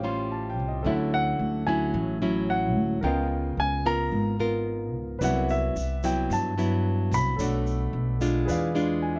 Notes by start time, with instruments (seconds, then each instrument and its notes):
Already playing: upright bass A1, nylon-string guitar A2, grand piano G4 C5 C#5 F5 G5
0.04 nylon-string guitar G3 C#4 F4, grand piano C6
0.32 grand piano A5
0.50 grand piano G5
0.57 upright bass C2
0.68 grand piano D#5
0.83 upright bass D2, nylon-string guitar D3 F#3 C#4 E4, grand piano A4 C#5 E5
0.87 grand piano E5 F#5
1.14 grand piano F#5
1.39 upright bass D2
1.67 nylon-string guitar F#3 C#4 E4, grand piano G#5
1.94 upright bass A1, nylon-string guitar A2
2.22 nylon-string guitar F#3 C#4 E4
2.50 grand piano F#5
2.75 upright bass D2
3.01 upright bass C#2, nylon-string guitar C#3 B3 F4 A#4, grand piano A#4 D#5 G5
3.07 grand piano F5
3.57 upright bass C#2, grand piano G#5
3.86 nylon-string guitar B3 F4 A#4, grand piano A#5
4.12 upright bass G#1, nylon-string guitar G#2
4.40 nylon-string guitar B3 F4 A#4
4.94 upright bass C#2
5.19 upright bass C2, nylon-string guitar C3 F#3 B3 E4, grand piano B4 D5, shaker
5.23 grand piano E5 F#5
5.49 grand piano E5, shaker
5.76 upright bass C2, shaker
6.04 nylon-string guitar F#3 B3 E4, grand piano G5, shaker
6.30 upright bass G2, nylon-string guitar G2, grand piano A5, shaker
6.58 nylon-string guitar F#3 B3 E4, shaker
7.11 upright bass C2, grand piano B5, shaker
7.36 upright bass B1, nylon-string guitar B2 A3 D4, grand piano A4 C#5 D5, shaker
7.41 nylon-string guitar F#4, grand piano F#5
7.67 shaker
7.93 upright bass B1
8.21 nylon-string guitar G#3 D4 F4, shaker
8.45 upright bass E2, nylon-string guitar E3, grand piano G#4 B4 D5, shaker
8.51 grand piano F5
8.75 nylon-string guitar G#3 D4 F4, shaker
9.02 grand piano G#5
9.16 grand piano E5